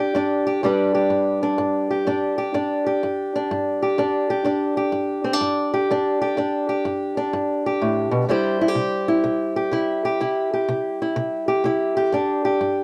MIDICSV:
0, 0, Header, 1, 2, 480
1, 0, Start_track
1, 0, Key_signature, 1, "major"
1, 0, Tempo, 479233
1, 621, Time_signature, 4, 2, 24, 8
1, 12858, End_track
2, 0, Start_track
2, 0, Title_t, "Steel-string acoustic guitar"
2, 0, Program_c, 0, 25
2, 0, Note_on_c, 0, 43, 85
2, 0, Note_on_c, 0, 55, 56
2, 0, Note_on_c, 0, 62, 65
2, 0, Note_on_c, 0, 67, 66
2, 0, Note_on_c, 0, 71, 60
2, 112, Note_off_c, 0, 43, 0
2, 147, Note_off_c, 0, 62, 0
2, 147, Note_on_c, 0, 43, 74
2, 158, Note_on_c, 0, 62, 64
2, 331, Note_off_c, 0, 71, 0
2, 455, Note_off_c, 0, 67, 0
2, 467, Note_on_c, 0, 67, 58
2, 591, Note_off_c, 0, 43, 0
2, 606, Note_off_c, 0, 67, 0
2, 609, Note_off_c, 0, 62, 0
2, 623, Note_off_c, 0, 55, 0
2, 631, Note_on_c, 0, 43, 67
2, 639, Note_on_c, 0, 55, 50
2, 647, Note_on_c, 0, 62, 50
2, 652, Note_on_c, 0, 67, 52
2, 662, Note_on_c, 0, 71, 55
2, 943, Note_off_c, 0, 67, 0
2, 947, Note_on_c, 0, 67, 54
2, 1073, Note_off_c, 0, 43, 0
2, 1102, Note_on_c, 0, 43, 64
2, 1425, Note_off_c, 0, 62, 0
2, 1429, Note_on_c, 0, 62, 55
2, 1548, Note_off_c, 0, 43, 0
2, 1583, Note_on_c, 0, 43, 82
2, 1905, Note_off_c, 0, 67, 0
2, 1909, Note_on_c, 0, 67, 53
2, 2028, Note_off_c, 0, 43, 0
2, 2070, Note_on_c, 0, 43, 69
2, 2072, Note_off_c, 0, 62, 0
2, 2076, Note_on_c, 0, 62, 53
2, 2379, Note_off_c, 0, 67, 0
2, 2383, Note_on_c, 0, 67, 59
2, 2512, Note_off_c, 0, 43, 0
2, 2546, Note_off_c, 0, 62, 0
2, 2546, Note_on_c, 0, 43, 70
2, 2550, Note_on_c, 0, 62, 53
2, 2865, Note_off_c, 0, 67, 0
2, 2869, Note_on_c, 0, 67, 58
2, 2990, Note_off_c, 0, 43, 0
2, 3035, Note_on_c, 0, 43, 66
2, 3357, Note_off_c, 0, 62, 0
2, 3361, Note_on_c, 0, 62, 51
2, 3475, Note_off_c, 0, 43, 0
2, 3517, Note_on_c, 0, 43, 75
2, 3827, Note_off_c, 0, 67, 0
2, 3831, Note_on_c, 0, 67, 57
2, 3955, Note_off_c, 0, 43, 0
2, 3987, Note_on_c, 0, 43, 71
2, 3990, Note_off_c, 0, 62, 0
2, 3994, Note_on_c, 0, 62, 57
2, 4168, Note_off_c, 0, 71, 0
2, 4303, Note_off_c, 0, 67, 0
2, 4307, Note_on_c, 0, 67, 63
2, 4430, Note_off_c, 0, 43, 0
2, 4452, Note_on_c, 0, 43, 60
2, 4457, Note_off_c, 0, 62, 0
2, 4461, Note_on_c, 0, 62, 54
2, 4467, Note_off_c, 0, 55, 0
2, 4774, Note_off_c, 0, 67, 0
2, 4778, Note_on_c, 0, 67, 57
2, 4903, Note_off_c, 0, 43, 0
2, 4929, Note_on_c, 0, 43, 68
2, 5247, Note_off_c, 0, 62, 0
2, 5251, Note_on_c, 0, 60, 51
2, 5340, Note_off_c, 0, 60, 0
2, 5340, Note_on_c, 0, 62, 49
2, 5381, Note_off_c, 0, 43, 0
2, 5418, Note_on_c, 0, 43, 82
2, 5741, Note_off_c, 0, 67, 0
2, 5745, Note_on_c, 0, 67, 60
2, 5865, Note_off_c, 0, 43, 0
2, 5900, Note_off_c, 0, 62, 0
2, 5916, Note_on_c, 0, 43, 72
2, 5922, Note_on_c, 0, 62, 54
2, 6221, Note_off_c, 0, 67, 0
2, 6225, Note_on_c, 0, 67, 62
2, 6354, Note_off_c, 0, 43, 0
2, 6371, Note_off_c, 0, 62, 0
2, 6380, Note_on_c, 0, 43, 65
2, 6389, Note_on_c, 0, 62, 50
2, 6696, Note_off_c, 0, 67, 0
2, 6700, Note_on_c, 0, 67, 57
2, 6827, Note_off_c, 0, 43, 0
2, 6861, Note_on_c, 0, 43, 69
2, 7171, Note_off_c, 0, 62, 0
2, 7183, Note_on_c, 0, 62, 49
2, 7307, Note_off_c, 0, 43, 0
2, 7345, Note_on_c, 0, 43, 77
2, 7671, Note_off_c, 0, 67, 0
2, 7675, Note_on_c, 0, 67, 58
2, 7788, Note_off_c, 0, 43, 0
2, 7828, Note_on_c, 0, 45, 61
2, 8123, Note_off_c, 0, 45, 0
2, 8127, Note_on_c, 0, 47, 62
2, 8283, Note_off_c, 0, 62, 0
2, 8295, Note_off_c, 0, 47, 0
2, 8299, Note_on_c, 0, 48, 64
2, 8307, Note_on_c, 0, 55, 55
2, 8316, Note_off_c, 0, 67, 0
2, 8316, Note_on_c, 0, 64, 48
2, 8320, Note_on_c, 0, 67, 50
2, 8321, Note_on_c, 0, 72, 61
2, 8623, Note_off_c, 0, 67, 0
2, 8627, Note_off_c, 0, 64, 0
2, 8627, Note_on_c, 0, 64, 61
2, 8695, Note_off_c, 0, 64, 0
2, 8695, Note_on_c, 0, 67, 48
2, 8746, Note_off_c, 0, 48, 0
2, 8766, Note_on_c, 0, 48, 73
2, 9097, Note_on_c, 0, 64, 56
2, 9219, Note_off_c, 0, 48, 0
2, 9252, Note_on_c, 0, 48, 73
2, 9565, Note_off_c, 0, 67, 0
2, 9577, Note_on_c, 0, 67, 57
2, 9702, Note_off_c, 0, 48, 0
2, 9730, Note_off_c, 0, 64, 0
2, 9730, Note_on_c, 0, 48, 63
2, 9742, Note_on_c, 0, 64, 53
2, 10061, Note_off_c, 0, 67, 0
2, 10065, Note_on_c, 0, 67, 58
2, 10181, Note_off_c, 0, 48, 0
2, 10200, Note_off_c, 0, 64, 0
2, 10210, Note_off_c, 0, 72, 0
2, 10221, Note_on_c, 0, 48, 63
2, 10227, Note_on_c, 0, 64, 51
2, 10548, Note_off_c, 0, 67, 0
2, 10552, Note_on_c, 0, 67, 51
2, 10667, Note_off_c, 0, 48, 0
2, 10702, Note_on_c, 0, 48, 69
2, 11017, Note_off_c, 0, 64, 0
2, 11035, Note_on_c, 0, 64, 52
2, 11147, Note_off_c, 0, 48, 0
2, 11178, Note_on_c, 0, 48, 77
2, 11494, Note_off_c, 0, 67, 0
2, 11498, Note_on_c, 0, 67, 64
2, 11625, Note_off_c, 0, 48, 0
2, 11659, Note_on_c, 0, 48, 68
2, 11661, Note_off_c, 0, 64, 0
2, 11673, Note_on_c, 0, 64, 57
2, 11982, Note_off_c, 0, 67, 0
2, 11986, Note_on_c, 0, 67, 60
2, 12106, Note_off_c, 0, 48, 0
2, 12126, Note_off_c, 0, 64, 0
2, 12143, Note_off_c, 0, 55, 0
2, 12144, Note_on_c, 0, 43, 69
2, 12157, Note_on_c, 0, 62, 48
2, 12465, Note_off_c, 0, 67, 0
2, 12469, Note_on_c, 0, 67, 61
2, 12589, Note_off_c, 0, 43, 0
2, 12627, Note_on_c, 0, 43, 64
2, 12858, Note_off_c, 0, 43, 0
2, 12858, Note_off_c, 0, 62, 0
2, 12858, Note_off_c, 0, 67, 0
2, 12858, End_track
0, 0, End_of_file